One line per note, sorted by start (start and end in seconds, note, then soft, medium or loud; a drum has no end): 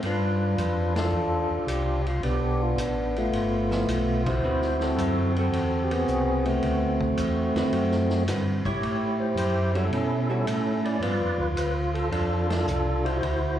0.03 0.56 G2 medium
0.03 0.95 D4 medium
0.03 0.95 F4 medium
0.03 0.55 B4 medium
0.03 ride medium
0.58 1.11 F2 medium
0.58 0.94 B4 medium
0.58 hi-hat pedal soft
0.58 ride medium
0.96 2.02 D4 medium
0.96 2.02 F4 medium
0.96 1.70 A4 medium
0.96 snare medium
0.96 ride medium
1.12 1.48 E2 medium
1.50 1.59 E2 soft
1.67 2.21 C2 medium
1.67 2.06 G4 medium
1.67 hi-hat pedal soft
1.67 ride medium
2.07 2.23 F4 medium
2.07 ride soft
2.21 2.75 B1 medium
2.21 3.18 B3 medium
2.21 2.79 D4 medium
2.21 2.62 G4 medium
2.21 ride medium
2.63 2.79 F4 medium
2.77 3.30 A1 medium
2.77 3.18 D4 medium
2.77 hi-hat pedal medium
2.77 ride medium
3.16 4.23 A3 medium
3.16 4.23 B3 medium
3.16 4.30 F4 medium
3.16 ride soft
3.32 3.86 G1 medium
3.32 ride medium
3.71 3.86 F3 medium
3.71 3.86 B3 medium
3.71 3.87 E4 medium
3.71 snare medium
3.87 4.41 B1 medium
3.87 hi-hat pedal medium
3.87 ride medium
4.26 5.33 E4 medium
4.26 4.81 F#4 medium
4.26 4.83 C5 medium
4.26 kick medium
4.26 ride medium
4.43 4.96 D2 medium
4.43 5.98 D3 medium
4.43 5.98 C4 medium
4.43 5.98 F#4 medium
4.43 5.98 B4 medium
4.62 snare soft
4.80 5.37 C4 medium
4.80 5.37 F#4 medium
4.80 5.32 A4 medium
4.80 snare soft
4.80 ride soft
4.96 5.50 F#2 medium
4.96 hi-hat pedal medium
4.96 ride medium
5.36 5.92 C4 medium
5.36 6.43 F#4 medium
5.36 5.84 A4 medium
5.36 ride soft
5.52 6.05 E2 medium
5.52 ride medium
5.83 5.91 G4 medium
5.91 6.97 B3 medium
5.91 6.45 C4 medium
5.91 6.48 G#4 loud
5.91 ride medium
6.08 6.61 C2 medium
6.08 hi-hat pedal medium
6.46 8.24 A3 soft
6.46 8.24 C4 medium
6.46 8.23 F#4 medium
6.46 ride soft
6.62 7.15 D2 medium
6.62 ride medium
7.01 kick medium
7.17 7.52 E2 medium
7.17 hi-hat pedal soft
7.17 ride medium
7.55 7.64 E2 soft
7.55 7.71 D3 medium
7.55 7.71 C4 medium
7.55 7.71 F#4 medium
7.55 7.71 B4 medium
7.55 snare medium
7.55 ride soft
7.72 8.25 F#2 medium
7.72 ride medium
7.91 snare soft
8.10 snare soft
8.26 8.62 G2 medium
8.26 8.62 D3 medium
8.26 8.62 C4 medium
8.26 8.62 F#4 medium
8.26 8.62 B4 medium
8.26 snare soft
8.26 hi-hat pedal medium
8.26 ride medium
8.65 8.73 G2 soft
8.65 9.72 E4 medium
8.65 9.72 G4 medium
8.65 9.22 C#5 medium
8.65 kick soft
8.65 ride soft
8.81 9.35 A2 medium
8.81 ride medium
9.20 9.37 C5 medium
9.36 9.90 F#2 medium
9.36 9.77 C5 medium
9.36 hi-hat pedal soft
9.36 ride medium
9.74 9.90 G3 medium
9.74 9.90 C#4 medium
9.74 10.29 C#4 medium
9.74 10.30 E4 medium
9.74 9.91 F#4 medium
9.74 10.29 A4 medium
9.74 ride soft
9.91 10.45 B2 medium
9.91 ride medium
10.29 10.45 G3 medium
10.29 10.46 C#4 medium
10.29 10.98 C#4 medium
10.29 10.99 E4 medium
10.29 10.46 F#4 medium
10.29 10.81 A4 medium
10.45 10.99 A2 medium
10.45 hi-hat pedal soft
10.45 ride medium
10.85 11.02 D5 medium
10.85 ride soft
11.01 11.19 G2 medium
11.01 12.57 F3 soft
11.01 12.57 B3 soft
11.01 12.09 F4 medium
11.01 11.39 B4 medium
11.01 11.42 D5 medium
11.01 ride medium
11.20 11.38 F2 medium
11.38 11.55 D2 medium
11.38 11.48 B4 medium
11.57 12.10 D2 medium
11.57 11.74 B4 medium
11.57 hi-hat pedal medium
11.57 ride medium
11.94 12.10 A4 medium
11.94 ride soft
12.11 12.65 F2 medium
12.11 12.50 D4 medium
12.11 12.49 F4 medium
12.11 12.47 A4 medium
12.11 ride medium
12.50 13.19 D4 medium
12.50 13.18 F4 medium
12.50 13.07 A4 medium
12.50 snare medium
12.50 ride medium
12.67 13.21 C2 medium
12.67 hi-hat pedal medium
13.05 13.59 E4 medium
13.05 13.59 F#4 medium
13.05 13.56 C5 medium
13.05 ride soft
13.23 13.59 D2 medium
13.23 ride medium